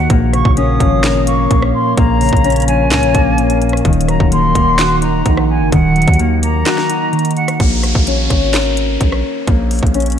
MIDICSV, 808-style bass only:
0, 0, Header, 1, 2, 480
1, 0, Start_track
1, 0, Key_signature, -5, "minor"
1, 0, Tempo, 468750
1, 102, Time_signature, 4, 2, 24, 8
1, 10436, End_track
2, 0, Start_track
2, 0, Title_t, "808-style bass"
2, 0, Program_c, 0, 38
2, 102, Note_on_c, 0, 34, 120
2, 448, Note_off_c, 0, 34, 0
2, 462, Note_on_c, 0, 34, 105
2, 808, Note_off_c, 0, 34, 0
2, 822, Note_on_c, 0, 32, 107
2, 1513, Note_off_c, 0, 32, 0
2, 1543, Note_on_c, 0, 34, 105
2, 1773, Note_off_c, 0, 34, 0
2, 2022, Note_on_c, 0, 34, 119
2, 2368, Note_off_c, 0, 34, 0
2, 2382, Note_on_c, 0, 34, 111
2, 2982, Note_on_c, 0, 37, 100
2, 2998, Note_off_c, 0, 34, 0
2, 3102, Note_on_c, 0, 34, 100
2, 3118, Note_off_c, 0, 37, 0
2, 3216, Note_off_c, 0, 34, 0
2, 3221, Note_on_c, 0, 34, 105
2, 3913, Note_off_c, 0, 34, 0
2, 3942, Note_on_c, 0, 27, 123
2, 4288, Note_off_c, 0, 27, 0
2, 4302, Note_on_c, 0, 27, 107
2, 4648, Note_off_c, 0, 27, 0
2, 4662, Note_on_c, 0, 27, 103
2, 5353, Note_off_c, 0, 27, 0
2, 5383, Note_on_c, 0, 34, 105
2, 5742, Note_on_c, 0, 30, 98
2, 5757, Note_off_c, 0, 34, 0
2, 5856, Note_off_c, 0, 30, 0
2, 5862, Note_on_c, 0, 27, 116
2, 6207, Note_off_c, 0, 27, 0
2, 6222, Note_on_c, 0, 39, 109
2, 6798, Note_off_c, 0, 39, 0
2, 7782, Note_on_c, 0, 34, 122
2, 8127, Note_off_c, 0, 34, 0
2, 8142, Note_on_c, 0, 34, 103
2, 8488, Note_off_c, 0, 34, 0
2, 8502, Note_on_c, 0, 32, 104
2, 9193, Note_off_c, 0, 32, 0
2, 9223, Note_on_c, 0, 34, 102
2, 9453, Note_off_c, 0, 34, 0
2, 9702, Note_on_c, 0, 34, 117
2, 10048, Note_off_c, 0, 34, 0
2, 10062, Note_on_c, 0, 34, 112
2, 10436, Note_off_c, 0, 34, 0
2, 10436, End_track
0, 0, End_of_file